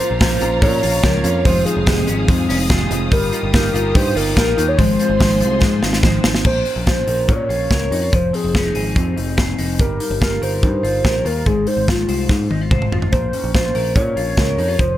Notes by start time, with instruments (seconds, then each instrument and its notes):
Already playing: clean electric guitar A#3, string section A#4 F5 A#5, soft synth lead C5
0.00 steel-string acoustic guitar A#3 C#4 F4, clean electric guitar F4
0.11 picked electric bass A#1
0.19 steel-string acoustic guitar A#2 F3 A#3 C#4 F4, clean electric guitar C#4, soft synth lead C5, kick, snare, hi-hat pedal, open hi-hat
0.40 picked electric bass A#1, steel-string acoustic guitar A#3 C#4 F4, clean electric guitar F4, hi-hat pedal, open hi-hat
0.61 picked electric bass A#2, steel-string acoustic guitar F3 A#3 C#4 F4, clean electric guitar C#4, soft synth lead C#5, kick, hi-hat pedal, open hi-hat
0.81 picked electric bass A#1, steel-string acoustic guitar A#3 C#4 F4, clean electric guitar F4, hi-hat pedal, open hi-hat
1.02 picked electric bass C#2, steel-string acoustic guitar A#2 F3 A#3 C#4 F4, clean electric guitar A#4, kick, snare, hi-hat pedal, open hi-hat
1.24 picked electric bass F2, steel-string acoustic guitar A#3 C#4 F4, clean electric guitar C#4, hi-hat pedal, open hi-hat
1.44 picked electric bass F1, steel-string acoustic guitar F2 C3 D#3 G#3 C4 F4, clean electric guitar F3, string section G#4 D#6, soft synth lead C5, kick, hi-hat pedal, open hi-hat
1.65 steel-string acoustic guitar D#3 G#3 C4 F4, clean electric guitar D#4, soft synth lead G#4, hi-hat pedal, open hi-hat
1.77 picked electric bass F1
1.86 steel-string acoustic guitar F2 C3 D#3 G#3 C4 F4, clean electric guitar C4, kick, snare, hi-hat pedal, open hi-hat
2.07 picked electric bass G#1, steel-string acoustic guitar D#3 G#3 C4 F4, clean electric guitar C#4, hi-hat pedal, open hi-hat
2.18 clean electric guitar D#4
2.28 picked electric bass F2, steel-string acoustic guitar D#3 G#3 C4 F4, clean electric guitar C4, kick, hi-hat pedal, open hi-hat
2.48 picked electric bass F1, steel-string acoustic guitar D#3 G#3 C4 F4, clean electric guitar C#4, hi-hat pedal, open hi-hat
2.59 clean electric guitar D#4
2.69 steel-string acoustic guitar F2 C3 D#3 G#3 C4 F4, clean electric guitar G#4, kick, snare
2.89 picked electric bass F1, steel-string acoustic guitar D#3 G#3 C4 F4, clean electric guitar C4, hi-hat pedal, open hi-hat
3.10 picked electric bass G1, steel-string acoustic guitar G3 A#3 D#4 F4, clean electric guitar G3, string section G4, soft synth lead A#4, kick, hi-hat pedal, open hi-hat
3.31 steel-string acoustic guitar A#3 D#4 F4, clean electric guitar F4, hi-hat pedal, open hi-hat
3.43 picked electric bass G1
3.52 steel-string acoustic guitar G3 A#3 D#4 F4, clean electric guitar D#4, soft synth lead A#4, kick, snare, hi-hat pedal, open hi-hat
3.73 picked electric bass G1, steel-string acoustic guitar A#3 D#4 F4, clean electric guitar F4, soft synth lead A#4, hi-hat pedal, open hi-hat
3.94 picked electric bass G2, steel-string acoustic guitar G3 A#3 D#4 F4, clean electric guitar D#4, soft synth lead C5, kick, hi-hat pedal, open hi-hat
4.15 picked electric bass G1, steel-string acoustic guitar A#3 D#4 F4, clean electric guitar F4, soft synth lead A#4, hi-hat pedal, open hi-hat
4.35 picked electric bass A#1, steel-string acoustic guitar G3 A#3 D#4 F4, clean electric guitar A#4, kick, snare, hi-hat pedal, open hi-hat
4.56 picked electric bass D#2, steel-string acoustic guitar A#3 D#4 F4, clean electric guitar D#4, hi-hat pedal, open hi-hat
4.68 soft synth lead C#5
4.77 picked electric bass G#1, steel-string acoustic guitar G#2 D#3 F3 G#3 C4 F4, clean electric guitar G#3, string section G#4 C6, soft synth lead C5, kick, hi-hat pedal, open hi-hat
4.99 steel-string acoustic guitar F3 G#3 C4 F4, clean electric guitar F4, hi-hat pedal, open hi-hat
5.10 picked electric bass G#1
5.19 steel-string acoustic guitar G#2 D#3 F3 G#3 C4 F4, clean electric guitar D#4, kick, snare, hi-hat pedal, open hi-hat
5.40 picked electric bass C2, steel-string acoustic guitar F3 G#3 C4 F4, clean electric guitar F4, hi-hat pedal, open hi-hat
5.61 picked electric bass G#2, steel-string acoustic guitar F3 G#3 C4 F4, clean electric guitar D#4, kick, snare
5.82 picked electric bass G#1, steel-string acoustic guitar F3 G#3 C4 F4, clean electric guitar F4, snare
5.93 snare
6.03 steel-string acoustic guitar G#2 D#3 F3 G#3 C4 F4, clean electric guitar C5, kick, snare
6.24 picked electric bass G#1, steel-string acoustic guitar F3 G#3 C4 F4, clean electric guitar D#4, snare
6.35 snare
6.44 picked electric bass A#1, clean electric guitar A#3, soft synth lead C5, kick, crash
6.65 clean electric guitar C#4, open hi-hat
6.76 picked electric bass A#1
6.86 clean electric guitar F4, soft synth lead C5, kick, snare, closed hi-hat
7.07 picked electric bass A#1, clean electric guitar A#4, open hi-hat
7.28 picked electric bass A#2, clean electric guitar C#4, soft synth lead C#5, kick, closed hi-hat
7.49 picked electric bass A#1, clean electric guitar F4, open hi-hat
7.71 picked electric bass C#2, clean electric guitar A#4, kick, snare, closed hi-hat
7.91 picked electric bass F2, clean electric guitar D#4, open hi-hat
8.02 clean electric guitar F4
8.12 picked electric bass F1, clean electric guitar F3, soft synth lead C5, kick, closed hi-hat
8.33 clean electric guitar C4, soft synth lead G#4, open hi-hat
8.45 picked electric bass F1
8.55 clean electric guitar C#4, kick, snare, closed hi-hat
8.65 clean electric guitar D#4
8.75 picked electric bass G#1, clean electric guitar G#4, open hi-hat
8.96 picked electric bass F2, clean electric guitar C4, kick, closed hi-hat
9.16 picked electric bass F1, clean electric guitar D#4, open hi-hat
9.37 clean electric guitar G#4, kick, snare, closed hi-hat
9.58 picked electric bass F1, clean electric guitar D#4, open hi-hat
9.79 picked electric bass G1, clean electric guitar G3, soft synth lead A#4, kick, closed hi-hat
10.00 clean electric guitar D#4, open hi-hat
10.10 picked electric bass G1
10.21 clean electric guitar F4, soft synth lead A#4, kick, snare, closed hi-hat
10.42 picked electric bass G1, clean electric guitar A#4, soft synth lead C5, open hi-hat
10.63 picked electric bass G2, clean electric guitar D#4, kick, closed hi-hat
10.83 picked electric bass G1, clean electric guitar F4, open hi-hat
11.05 picked electric bass A#1, clean electric guitar A#4, kick, snare, closed hi-hat
11.25 picked electric bass D#2, clean electric guitar F4, soft synth lead A#4, open hi-hat
11.46 picked electric bass G#1, clean electric guitar G#3, soft synth lead G#4, kick, closed hi-hat
11.67 clean electric guitar D#4, soft synth lead C5, open hi-hat
11.77 picked electric bass G#1
11.88 clean electric guitar F4, soft synth lead F4, kick, snare, closed hi-hat
12.08 picked electric bass C2, clean electric guitar C5, open hi-hat
12.29 picked electric bass G#2, clean electric guitar D#4, kick, snare
12.50 picked electric bass G#1, clean electric guitar D#4, high tom
12.61 clean electric guitar F4
12.71 clean electric guitar C5, kick, mid tom
12.82 mid tom
12.92 picked electric bass G#1, clean electric guitar F4, floor tom
13.02 floor tom
13.12 picked electric bass A#1, clean electric guitar A#3, soft synth lead C5, kick, closed hi-hat
13.33 clean electric guitar C#4, open hi-hat
13.44 picked electric bass A#1
13.54 clean electric guitar F4, soft synth lead C5, kick, snare, closed hi-hat
13.75 picked electric bass A#1, clean electric guitar A#4, open hi-hat
13.96 picked electric bass A#2, clean electric guitar C#4, soft synth lead C#5, kick, closed hi-hat
14.16 picked electric bass A#1, clean electric guitar F4, open hi-hat
14.37 picked electric bass C#2, clean electric guitar A#4, kick, snare, closed hi-hat
14.58 picked electric bass F2, clean electric guitar D#4, open hi-hat
14.68 clean electric guitar F4
14.79 picked electric bass F1, clean electric guitar F3, soft synth lead C5, kick, closed hi-hat